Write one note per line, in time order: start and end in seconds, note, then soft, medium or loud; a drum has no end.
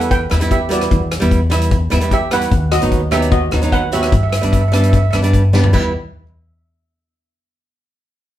0.00 0.27 E2 medium
0.00 0.14 G3 medium
0.00 0.15 B3 medium
0.00 0.15 E4 medium
0.00 closed hi-hat medium
0.11 0.48 B4 medium
0.11 0.52 G5 loud
0.11 kick loud
0.11 closed hi-hat medium
0.30 0.87 E2 medium
0.30 0.36 G3 medium
0.30 0.37 B3 medium
0.30 0.37 E4 medium
0.30 cross-stick medium
0.30 closed hi-hat medium
0.40 0.59 G3 medium
0.40 0.59 B3 medium
0.40 0.59 E4 medium
0.40 closed hi-hat medium
0.51 0.70 G4 medium
0.51 0.72 E5 medium
0.51 kick medium
0.51 closed hi-hat medium
0.69 1.00 G3 medium
0.69 1.01 B3 medium
0.69 1.01 E4 medium
0.69 1.09 F#4 medium
0.69 1.09 D5 medium
0.69 closed hi-hat loud
0.81 cross-stick medium
0.81 closed hi-hat medium
0.91 1.20 E2 loud
0.91 kick loud
0.91 closed hi-hat medium
1.12 cross-stick loud
1.12 closed hi-hat loud
1.20 1.88 E2 medium
1.20 1.39 G3 medium
1.20 1.39 B3 medium
1.20 1.40 E4 loud
1.20 closed hi-hat medium
1.31 kick medium
1.31 closed hi-hat medium
1.50 1.75 G3 medium
1.50 1.75 B3 medium
1.50 1.76 E4 loud
1.50 cross-stick medium
1.50 closed hi-hat loud
1.61 closed hi-hat medium
1.71 kick loud
1.71 closed hi-hat medium
1.90 2.48 E2 medium
1.90 1.97 G3 medium
1.90 1.97 B3 medium
1.90 1.98 E4 loud
1.90 cross-stick medium
1.90 closed hi-hat medium
2.01 2.19 G3 medium
2.01 2.19 B3 medium
2.01 2.20 E4 medium
2.01 closed hi-hat medium
2.11 2.21 G4 medium
2.11 2.22 E5 loud
2.11 kick medium
2.11 closed hi-hat medium
2.31 2.51 G3 medium
2.31 2.52 B3 medium
2.31 2.52 E4 medium
2.31 2.70 B4 medium
2.31 2.74 F#5 loud
2.31 cross-stick medium
2.31 closed hi-hat medium
2.41 closed hi-hat medium
2.52 2.80 D#2 loud
2.52 kick loud
2.52 closed hi-hat medium
2.72 3.09 F#4 medium
2.72 3.13 D#5 loud
2.72 cross-stick loud
2.72 closed hi-hat medium
2.81 3.49 D#2 medium
2.81 2.99 F#3 medium
2.81 3.00 B3 medium
2.81 3.00 D#4 medium
2.81 closed hi-hat medium
2.92 kick medium
2.92 closed hi-hat medium
3.11 3.36 F#3 medium
3.11 3.36 B3 medium
3.11 3.37 D#4 medium
3.11 3.31 G4 medium
3.11 3.33 E5 loud
3.11 cross-stick medium
3.11 closed hi-hat medium
3.22 closed hi-hat medium
3.31 3.69 F#4 medium
3.31 3.73 D#5 loud
3.31 kick loud
3.31 closed hi-hat medium
3.51 4.09 D#2 medium
3.51 3.58 F#3 medium
3.51 3.58 B3 medium
3.51 3.59 D#4 medium
3.51 cross-stick loud
3.51 closed hi-hat medium
3.62 3.80 F#3 medium
3.62 3.81 B3 medium
3.62 3.81 D#4 medium
3.62 closed hi-hat medium
3.72 3.92 B4 medium
3.72 3.93 F#5 loud
3.72 kick medium
3.72 closed hi-hat medium
3.92 4.12 F#3 medium
3.92 4.13 B3 medium
3.92 4.13 F#4 medium
3.92 4.00 G4 medium
3.92 3.99 E5 medium
3.92 closed hi-hat medium
4.01 4.06 E5 medium
4.01 cross-stick medium
4.01 closed hi-hat medium
4.07 4.14 E5 medium
4.12 4.41 G2 loud
4.12 kick loud
4.12 closed hi-hat medium
4.16 4.22 E5 medium
4.23 4.28 E5 medium
4.30 4.36 E5 medium
4.30 cross-stick loud
4.30 closed hi-hat loud
4.37 4.43 E5 medium
4.41 5.10 G2 medium
4.41 4.60 G3 medium
4.41 4.61 B3 medium
4.41 4.61 D4 medium
4.41 4.51 E5 medium
4.41 closed hi-hat medium
4.52 4.59 E5 medium
4.52 kick medium
4.52 closed hi-hat medium
4.61 4.67 E5 medium
4.68 4.97 G3 medium
4.68 4.74 E5 medium
4.73 4.97 B3 medium
4.73 4.97 D4 medium
4.73 4.80 E5 medium
4.73 cross-stick medium
4.73 closed hi-hat medium
4.82 4.88 E5 medium
4.82 closed hi-hat medium
4.89 4.95 E5 medium
4.89 kick loud
4.89 closed hi-hat medium
4.97 5.02 E5 medium
5.03 5.09 E5 medium
5.11 5.70 G2 medium
5.11 5.19 G3 medium
5.11 5.19 B3 medium
5.11 5.20 D4 medium
5.11 5.18 E5 medium
5.11 cross-stick loud
5.11 closed hi-hat medium
5.22 5.41 G3 medium
5.22 5.42 B3 medium
5.22 5.42 D4 medium
5.22 closed hi-hat medium
5.33 kick medium
5.33 closed hi-hat medium
5.53 5.72 G3 medium
5.53 5.72 B3 medium
5.53 5.73 D4 medium
5.53 snare medium
5.64 floor tom medium
5.73 5.93 E2 medium
5.73 5.92 G3 medium
5.73 5.92 B3 medium
5.73 5.92 E4 medium
5.73 kick loud
5.73 crash medium